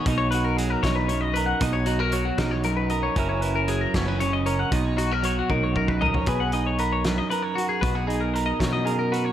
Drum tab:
HH |x-x-x-x-x-x-|x-x-x-x-x-x-|x-x-x-x-x-x-|x-x-x-------|
SD |------o-----|------o-----|------o-----|------------|
T1 |------------|------------|------------|------o-----|
FT |------------|------------|------------|----------oo|
BD |o-----o-----|o-----o-----|o-----o-----|o-----o-oo--|

HH |x-x-x-x-x-x-|x-x-x-x-x-x-|
SD |------o-----|------o-----|
T1 |------------|------------|
FT |------------|------------|
BD |o-----------|o-----o-----|